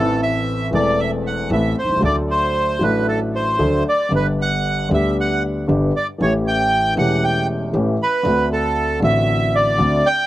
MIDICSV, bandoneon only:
0, 0, Header, 1, 2, 480
1, 0, Start_track
1, 0, Tempo, 521286
1, 1865, Time_signature, 4, 2, 24, 8
1, 5238, Tempo, 513259
1, 9520, End_track
2, 0, Start_track
2, 0, Title_t, "Bandoneon"
2, 0, Program_c, 0, 23
2, 0, Note_on_c, 0, 69, 74
2, 192, Note_off_c, 0, 69, 0
2, 208, Note_on_c, 0, 76, 77
2, 643, Note_off_c, 0, 76, 0
2, 687, Note_on_c, 0, 74, 68
2, 918, Note_on_c, 0, 76, 75
2, 923, Note_off_c, 0, 74, 0
2, 1023, Note_off_c, 0, 76, 0
2, 1167, Note_on_c, 0, 78, 66
2, 1380, Note_off_c, 0, 78, 0
2, 1406, Note_on_c, 0, 76, 68
2, 1619, Note_off_c, 0, 76, 0
2, 1645, Note_on_c, 0, 72, 65
2, 1858, Note_off_c, 0, 72, 0
2, 1886, Note_on_c, 0, 74, 70
2, 1989, Note_off_c, 0, 74, 0
2, 2125, Note_on_c, 0, 72, 69
2, 2610, Note_off_c, 0, 72, 0
2, 2610, Note_on_c, 0, 71, 57
2, 2823, Note_off_c, 0, 71, 0
2, 2840, Note_on_c, 0, 69, 61
2, 2945, Note_off_c, 0, 69, 0
2, 3089, Note_on_c, 0, 72, 60
2, 3531, Note_off_c, 0, 72, 0
2, 3579, Note_on_c, 0, 74, 60
2, 3793, Note_off_c, 0, 74, 0
2, 3828, Note_on_c, 0, 71, 62
2, 3929, Note_off_c, 0, 71, 0
2, 4067, Note_on_c, 0, 78, 70
2, 4502, Note_off_c, 0, 78, 0
2, 4550, Note_on_c, 0, 76, 63
2, 4759, Note_off_c, 0, 76, 0
2, 4793, Note_on_c, 0, 78, 66
2, 5000, Note_off_c, 0, 78, 0
2, 5494, Note_on_c, 0, 74, 62
2, 5598, Note_off_c, 0, 74, 0
2, 5737, Note_on_c, 0, 73, 68
2, 5840, Note_off_c, 0, 73, 0
2, 5975, Note_on_c, 0, 79, 84
2, 6410, Note_off_c, 0, 79, 0
2, 6451, Note_on_c, 0, 78, 72
2, 6689, Note_off_c, 0, 78, 0
2, 6689, Note_on_c, 0, 79, 69
2, 6905, Note_off_c, 0, 79, 0
2, 7423, Note_on_c, 0, 71, 69
2, 7856, Note_off_c, 0, 71, 0
2, 7892, Note_on_c, 0, 69, 72
2, 8331, Note_off_c, 0, 69, 0
2, 8373, Note_on_c, 0, 76, 77
2, 8852, Note_on_c, 0, 74, 69
2, 8858, Note_off_c, 0, 76, 0
2, 9327, Note_on_c, 0, 79, 85
2, 9338, Note_off_c, 0, 74, 0
2, 9520, Note_off_c, 0, 79, 0
2, 9520, End_track
0, 0, End_of_file